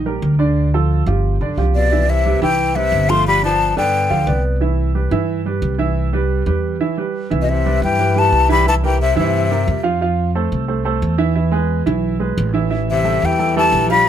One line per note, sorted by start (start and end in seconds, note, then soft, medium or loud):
0.00 0.18 A#1 medium
0.06 0.33 G3 medium
0.06 0.33 G4 medium
0.06 0.33 A#4 medium
0.22 1.01 D2 medium
0.39 0.67 D3 medium
0.39 0.67 D4 medium
0.39 0.67 D5 medium
0.74 1.01 F3 medium
0.74 1.01 F4 medium
0.74 1.01 A4 medium
1.06 1.38 G1 medium
1.06 1.34 F3 medium
1.06 1.35 F4 medium
1.06 1.35 G4 medium
1.41 1.56 B1 medium
1.41 1.55 D3 medium
1.41 1.55 D4 medium
1.41 1.55 D5 medium
1.57 2.36 C2 medium
1.57 1.85 F3 medium
1.57 1.85 F4 medium
1.57 1.86 G4 medium
1.75 2.09 B2 medium
1.75 2.11 D5 medium
1.92 2.19 E3 medium
1.92 2.20 E4 medium
1.92 2.20 E5 medium
2.08 2.41 C3 medium
2.08 2.43 E5 medium
2.25 2.39 G3 medium
2.25 2.39 G4 medium
2.25 2.39 B4 medium
2.41 2.89 C2 medium
2.41 2.69 E3 medium
2.41 2.78 E3 medium
2.41 2.69 E4 medium
2.41 2.70 E5 medium
2.41 2.77 G5 medium
2.75 3.12 C3 medium
2.75 3.03 G3 medium
2.75 3.03 G4 medium
2.75 3.04 B4 medium
2.75 3.11 E5 medium
2.92 3.71 G1 medium
3.09 3.37 F3 medium
3.09 3.27 A3 medium
3.09 3.37 F4 medium
3.09 3.37 F5 medium
3.09 3.26 C6 medium
3.27 3.43 G3 medium
3.27 3.43 B5 loud
3.43 3.75 F3 medium
3.43 3.71 B3 medium
3.43 3.71 B4 medium
3.43 3.71 D5 medium
3.43 3.75 A5 medium
3.76 4.08 G2 medium
3.76 4.41 D3 medium
3.76 4.04 B3 medium
3.76 4.05 B4 medium
3.76 4.05 D5 medium
3.76 4.41 G5 medium
4.10 4.26 D2 medium
4.10 4.24 F3 medium
4.10 4.25 F4 medium
4.10 4.25 F5 medium
4.27 5.06 C2 loud
4.27 4.55 B3 medium
4.27 4.55 B4 medium
4.27 4.55 D5 medium
4.60 4.89 E3 medium
4.60 4.89 E4 medium
4.60 4.89 E5 medium
4.95 5.09 G3 medium
4.95 5.09 G4 medium
4.95 5.09 B4 medium
5.11 5.59 G2 medium
5.11 5.39 E3 medium
5.11 5.40 E4 medium
5.11 5.40 E5 medium
5.45 5.73 G3 medium
5.45 5.74 G4 medium
5.45 5.74 B4 medium
5.62 6.41 C2 loud
5.78 6.07 E3 medium
5.78 6.07 E4 medium
5.78 6.07 E5 medium
6.13 6.41 G3 medium
6.13 6.41 G4 medium
6.13 6.41 B4 medium
6.46 6.78 E2 medium
6.46 6.74 G3 medium
6.46 6.75 G4 medium
6.46 6.75 B4 medium
6.80 6.95 E3 medium
6.80 6.95 E4 medium
6.80 6.95 E5 medium
6.97 7.25 G3 medium
6.97 7.25 G4 medium
6.97 7.26 B4 medium
7.30 7.79 C2 medium
7.30 7.59 E3 medium
7.30 7.59 E4 medium
7.30 7.59 E5 medium
7.42 7.52 B2 medium
7.42 7.51 D#5 medium
7.49 7.83 C3 medium
7.49 7.83 E5 medium
7.65 7.93 G3 medium
7.65 7.93 G4 medium
7.65 7.93 B4 medium
7.82 8.29 G2 medium
7.82 8.17 E3 medium
7.82 8.20 G5 medium
7.99 8.13 G3 medium
7.99 8.13 G4 medium
7.99 8.13 B4 medium
8.15 8.50 E3 medium
8.15 8.43 G3 medium
8.15 8.43 G4 medium
8.15 8.43 B4 medium
8.15 8.50 A5 loud
8.32 9.11 C2 medium
8.49 8.63 E3 medium
8.49 8.66 G3 medium
8.49 8.63 E4 medium
8.49 8.63 E5 medium
8.49 8.66 B5 medium
8.66 8.80 E3 medium
8.66 8.75 E3 medium
8.66 8.80 E4 medium
8.66 8.80 E5 medium
8.66 8.74 A5 loud
8.83 9.00 E3 medium
8.83 9.11 G3 medium
8.83 9.11 G4 medium
8.83 9.11 A#4 medium
8.83 9.00 G5 medium
9.01 9.16 C3 medium
9.01 9.17 E5 medium
9.16 9.64 G2 medium
9.16 9.81 C3 medium
9.16 9.44 E3 medium
9.16 9.44 E4 medium
9.16 9.44 E5 medium
9.16 9.81 E5 medium
9.51 9.78 G3 medium
9.51 9.79 G4 medium
9.51 9.79 A#4 medium
9.68 10.46 F2 loud
9.83 9.98 F3 medium
9.83 9.98 F4 medium
9.83 9.98 F5 medium
10.01 10.29 F3 medium
10.01 10.29 F4 medium
10.01 10.30 F5 medium
10.35 10.63 A3 medium
10.35 10.63 A4 medium
10.35 10.63 C5 medium
10.52 10.99 C2 medium
10.68 10.82 A3 medium
10.68 10.82 A4 medium
10.68 10.83 C5 medium
10.85 11.13 A3 medium
10.85 11.13 A4 medium
10.85 11.13 C5 medium
11.02 11.81 E2 medium
11.18 11.33 E3 medium
11.18 11.33 E4 medium
11.18 11.33 E5 medium
11.35 11.50 E3 medium
11.35 11.50 E4 medium
11.35 11.50 E5 medium
11.52 11.80 G#3 medium
11.52 11.80 G#4 medium
11.52 11.81 B4 medium
11.86 12.34 B1 medium
11.86 12.14 E3 medium
11.86 12.14 E4 medium
11.86 12.14 E5 medium
12.20 12.48 G#3 medium
12.20 12.48 G#4 medium
12.20 12.48 B4 medium
12.38 13.17 A1 loud
12.53 12.68 E3 medium
12.53 12.68 E4 medium
12.53 12.68 E5 medium
12.70 12.99 E3 medium
12.70 12.99 E4 medium
12.70 12.99 E5 medium
12.90 13.25 C3 medium
12.90 13.27 E5 medium
13.04 13.32 G3 medium
13.04 13.33 G4 medium
13.04 13.33 A4 medium
13.22 13.69 E2 medium
13.22 13.56 E3 medium
13.22 13.58 G5 medium
13.39 13.53 G3 medium
13.39 13.53 G4 medium
13.39 13.53 A4 medium
13.56 13.88 E3 medium
13.56 13.84 G3 medium
13.56 13.84 G4 medium
13.56 13.84 A4 medium
13.56 13.89 A5 loud
13.72 14.09 A#1 loud
13.90 14.04 F3 medium
13.90 14.08 G3 medium
13.90 14.04 F4 medium
13.90 14.04 F5 medium
13.90 14.09 B5 loud